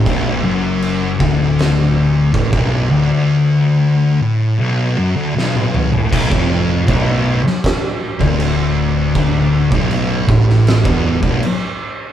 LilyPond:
<<
  \new Staff \with { instrumentName = "Distorted electric guitar" } { \clef bass \time 4/4 \key b \minor \tempo 4 = 79 b,,8 fis,4 d,4. a,16 b,,8 d,16~ | d,4. a,8 b,,8 fis,16 d,16 b,,8. a,16 | b,,16 eis,8. b,,8. r4 d,4~ d,16~ | d,8. b,,8. a,8. e,8 b,,16 r4 | }
  \new Staff \with { instrumentName = "Distorted electric guitar" } { \clef bass \time 4/4 \key b \minor b,,8 fis,4 d,4. a,16 b,,8 d,16~ | d,4. a,8 b,,8 fis,16 d,16 b,,8. a,16 | b,,16 eis,8. b,,8. r4 d,4~ d,16~ | d,8. b,,8. a,8. e,8 b,,16 r4 | }
  \new Staff \with { instrumentName = "Picked electric bass" } { \clef bass \time 4/4 \key b \minor b,,,8 fis,,4 d,,4. a,,16 b,,,8 d,,16 | r1 | b,,,16 eis,,8. b,,,8. r4 d,,4~ d,,16~ | d,,8. b,,,8. a,,8. e,,8 b,,,16 r4 | }
  \new DrumStaff \with { instrumentName = "Drums" } \drummode { \time 4/4 <cymc bd>4 cymc8 bd8 <cymc sn>4 <cymc bd>16 bd8. | r4 r4 r4 sn16 tommh16 toml16 tomfh16 | <cymc bd>16 bd8. <cymc bd>8. sn16 <cymc bd sn>8. bd16 cymc4 | <cymc bd>8. bd16 cymc8 bd16 sn16 <cymc sn>16 bd8 bd16 cymc4 | }
>>